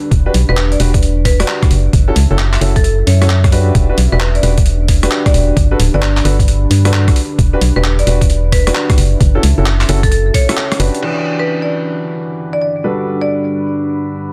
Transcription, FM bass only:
0.11 E1
0.34 B1
0.49 E1
0.80 E1
1.71 F#1
1.93 F#1
2.16 C#2
2.31 F#1
2.61 F#1
3.07 F#2
3.75 E1
3.98 B1
4.12 E1
4.43 E1
5.34 E1
5.57 G1
5.79 D1
5.94 G1
6.25 G1
6.70 G2
7.39 E1
7.61 B1
7.76 E1
8.07 E1
8.98 F#1
9.21 F#1
9.43 C#2
9.58 F#1
9.89 F#1
10.80 F#1

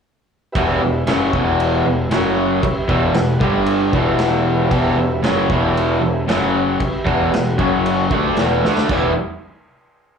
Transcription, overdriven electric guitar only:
0.56 E2 B2 E3
0.82 E2 B2
1.08 F#2 C#3 F#3
1.34 E2 B2 E3
1.86 E2 B2
2.11 F#2 C#3 F#3
2.63 muted overdriven electric guitar stroke
2.88 E2 B2 E3
3.15 E2 B2
3.39 G2 D3 G3
3.93 E2 B2 E3
4.71 E2 B2 E3
4.98 E2 B2
5.22 F#2 C#3 F#3
5.50 E2 B2 E3
6.01 E2 B2
6.28 F#2 C#3 F#3
6.82 muted overdriven electric guitar stroke
7.05 E2 B2 E3
7.31 E2 B2
7.58 F#2 C#3 F#3
8.11 D3 A3 D4
8.38 E2 B2 E3
8.65 D3 A3 D4
8.91 E3 G3 B3 E4

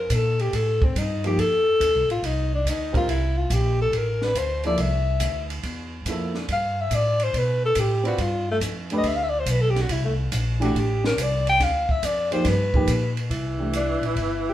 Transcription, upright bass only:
0.10 A#2
0.53 A2
0.95 G2
1.38 F2
1.80 D#2
1.94 C2
2.08 A1
2.22 C2
2.65 D2
3.08 C2
3.50 A#1
3.92 A1
4.35 D2
4.77 C2
5.20 D2
5.63 E2
6.05 F2
6.48 G2
6.90 A2
7.34 B2
7.76 A2
8.18 G2
8.60 F2
9.04 D2
9.46 B1
9.89 C2
10.32 A#1
10.75 A1
11.17 C2
11.60 D2
12.02 F2
12.45 G2
12.87 A#2
13.30 C2
14.01 A#1
14.15 G1

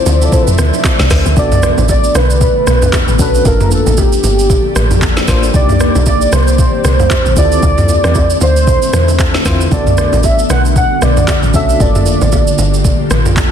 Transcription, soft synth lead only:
Already playing: C5
0.25 D5
0.33 C5
0.43 B4
0.52 C5
1.38 D5
1.90 D5
2.17 B4
2.43 B4
3.21 B4
3.47 A#4
3.73 A4
3.99 G4
5.55 D5
6.08 D5
6.34 C5
6.60 C5
7.38 D5
8.43 C5
9.73 D5
10.25 E5
10.51 F#5
10.77 F#5
11.03 D5
11.55 E5
11.81 D5

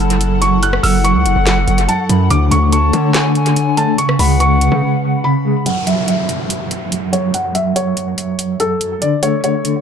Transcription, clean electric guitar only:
Already playing: F#2 F#3
0.21 F#2
0.42 F#3
0.63 F#2
0.84 F#3
1.05 F#2
1.26 F#2
1.46 F#2
1.89 F#2
2.10 F#3
2.31 D3
2.52 A3
2.72 D3
2.93 D3
3.14 D3
3.56 D3
3.77 A3
3.98 C#3
4.19 G#3
4.40 C#3
4.61 C#3
4.82 C#3
5.24 C#3
5.45 G#3
5.66 F#2
5.87 F#3
6.08 F#2
6.29 F#2
6.50 F#2
6.92 F#2
7.13 F#3
7.34 F#2
7.55 F#3
7.97 F#2
8.18 F#2
8.60 F#2
8.81 F#3
9.02 D3
9.23 A3
9.44 D3
9.65 D3

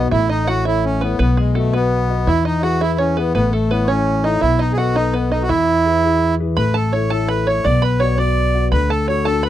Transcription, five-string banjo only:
Already playing: D#5
0.11 E5
0.29 D#5
0.47 F#5
0.65 E5
1.01 B4
1.19 B4
1.37 G#4
1.55 A4
1.73 B4
2.27 E5
2.45 D#5
2.63 F#5
2.81 E5
2.98 C#5
3.17 B4
3.35 B4
3.53 A4
3.71 B4
3.88 C#5
4.24 D#5
4.41 E5
4.59 D#5
4.78 F#5
4.96 D#5
5.13 B4
5.32 D#5
5.49 E5
6.57 B5
6.74 A5
6.93 C#5
7.10 A5
7.28 B5
7.47 C#5
7.64 D5
7.82 B5
8.00 C#5
8.18 D5
8.72 B5
8.90 A5
9.08 C#5
9.25 A5
9.43 B5

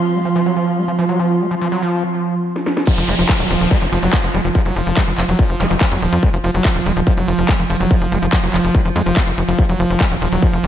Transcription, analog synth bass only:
2.98 F1
3.08 F1
3.19 F1
3.40 D#1
3.50 D#1
3.61 D#1
3.82 F1
3.92 F1
4.03 F1
4.24 F1
4.34 F1
4.45 F1
4.66 F1
4.76 F1
4.87 F1
5.08 F1
5.18 F1
5.29 F1
5.50 F1
5.60 F1
5.70 F1
5.91 F2
6.02 D#1
6.12 F2
6.33 F1
6.44 F1
6.54 F1
6.75 D#1
6.86 D#1
6.96 D#1
7.17 F1
7.28 F1
7.38 F1
7.59 F1
7.70 F1
7.80 F1
8.01 F1
8.12 F1
8.22 F1
8.43 F1
8.54 F1
8.64 F1
8.85 F1
8.96 F2
9.06 F1
9.27 F1
9.38 F1
9.48 F1
9.69 F1
9.80 F1
9.90 F1
10.11 D#1
10.21 D#1
10.32 D#1
10.53 F1
10.63 F1

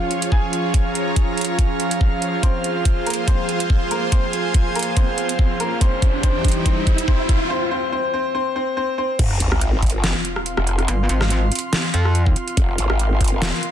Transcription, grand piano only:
Already playing: F4 F5
0.32 G#4 G#5
2.43 C4 C5
3.06 A#3 A#4
3.28 C4 C5
3.91 A#3 A#4
4.12 C4 C5
4.76 A#3 A#4
4.97 C4 C5
5.60 A#3 A#4
5.81 C4 C5
6.23 C4 C5
6.66 C4 C5
7.08 C4 C5
7.50 C4 C5
7.71 C4 C5
7.92 C4 C5
8.13 C4 C5
8.35 C4 C5
8.56 C4 C5
8.77 C4 C5
8.98 C4 C5

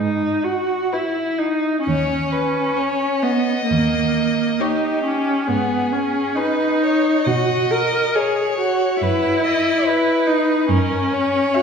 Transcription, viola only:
Already playing: D#4
0.44 F#4
0.93 E4
1.38 D#4
1.85 C#4
3.23 B3
3.69 A#3
4.60 D#4
5.04 C#4
5.47 B3
5.93 C#4
6.36 D#4
7.27 F#4
7.71 A#4
8.15 G#4
8.59 F#4
9.02 E4
10.27 D#4
10.70 C#4
11.55 F#4

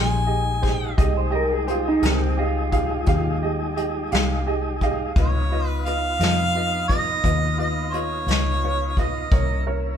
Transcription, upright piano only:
Already playing: G4 G#4 D#5
0.27 G4 G#4 D#5
0.62 G4 G#4 C5
0.97 G4 G#4 D#5
1.31 G4 G#4 D#5
1.67 G4 G#4 C5
2.02 G4 G#4 A#4
2.37 G4 G#4 D#5
2.71 G4 G#4 F5
3.07 G4 G#4 F5
3.42 G4 G#4 D#5
3.76 G4 G#4 D#5
4.11 G4 G#4 F5
4.46 G4 G#4 D#5 G#5
4.82 G4 G#4 D#5 F5
5.17 F4 B4 D#5
5.52 F4 B4 D#5
5.87 F4 B4 D#5
6.20 F4 B4 D#5
6.55 F4 B4 D#5
6.90 F4 B4 D#5
7.24 F4 B4 D#5
7.58 F4 B4 D#5
7.94 F4 B4 D#5
8.27 F4 B4 D#5
8.63 F4 B4 C#5
8.99 F4 B4 D#5
9.31 E4 A#4 C#5
9.66 E4 A#4 C#5

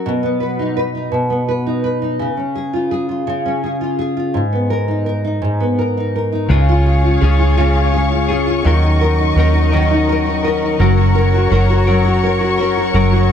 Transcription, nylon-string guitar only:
Already playing: F#3 C#4 F#4 A#4
0.06 B2
0.23 B3
0.40 B4
0.59 D#4
0.77 B4
0.95 D#4
1.12 B2
1.30 B3
1.49 B4
1.67 D#4
1.84 B4
2.02 D#4
2.19 C#3
2.37 C#4
2.55 G#4
2.73 F4
2.91 G#4
3.09 F4
3.27 C#3
3.46 C#4
3.63 G#4
3.81 F4
3.99 G#4
4.17 F4
4.34 G#2
4.52 B3
4.70 A#4
4.88 D#4
5.06 A#4
5.24 D#4
5.42 G#2
5.60 B3
5.79 A#4
5.97 D#4
6.16 A#4
6.32 D#4
6.51 C#3
6.69 F4
6.86 G#4
7.04 F4
7.21 G#4
7.39 F4
7.58 C#3
7.75 F4
7.93 G#4
8.12 F4
8.30 G#4
8.47 F4
8.65 D#3
8.83 D#4
9.01 A#4
9.19 D#4
9.37 A#4
9.55 D#4
9.73 D#3
9.90 D#4
10.09 A#4
10.27 D#4
10.44 A#4
10.62 D#4
10.80 F#3
10.97 F#4
11.15 A#4
11.34 F#4
11.52 A#4
11.70 F#4
11.88 F#3
12.05 F#4
12.24 A#4
12.41 F#4
12.59 A#4
12.77 F#4
12.94 F#3
13.13 F#4

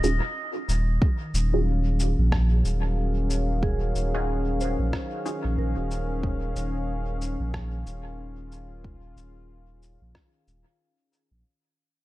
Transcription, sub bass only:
0.03 D#1
0.69 D#1
1.34 D#1
2.19 A#1
2.65 D#1
3.95 D#1
4.79 A#1
5.45 A#1
5.58 A#1
5.77 D#1
6.56 D#1
7.40 A#1
7.86 D#1
9.17 D#1
10.01 A#1
10.48 D#1
11.31 A#1

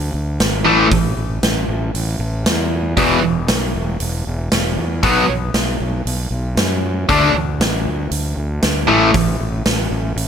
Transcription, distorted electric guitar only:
0.65 A2 E3 A3
2.97 E2 B2 E3
5.03 B2 F#3 B3
7.09 D3 A3 D4
8.87 A2 E3 A3

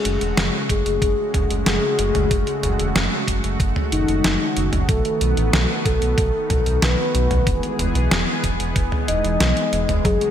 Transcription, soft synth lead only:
Already playing: G#4
0.70 G#4
1.67 G#4
3.92 D#4
4.89 A4
5.85 A4
6.82 B4
9.08 D#5
10.05 G#4

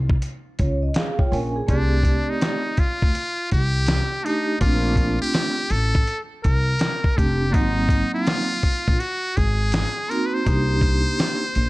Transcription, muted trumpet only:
1.69 D4
2.29 D#4
2.79 F4
3.52 G4
4.25 D#4
4.61 F4
5.22 G4
5.71 A4
6.44 A#4
7.17 G4
7.51 D4 D#4
8.14 F4
9.00 F#4
9.37 G#4
10.10 A#4
10.26 B4
10.34 C5

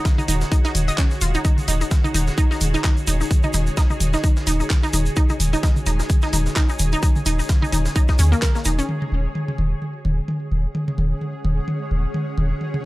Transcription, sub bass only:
0.28 D#1
0.75 D#1
1.21 D#1
1.68 D#1
2.14 D#1
2.61 D#1
3.07 D#1
3.54 D#1
4.00 D#1
4.47 D#1
4.93 D#1
5.40 D#1
5.86 D#1
6.33 D#1
6.79 D#1
7.26 D#1
7.73 D#1
8.19 D#2
8.66 D#1
9.12 D#1
9.58 D#1
10.05 D#1
10.51 D#1
10.98 D#1
11.44 D#1
11.91 D#1
12.38 D#1

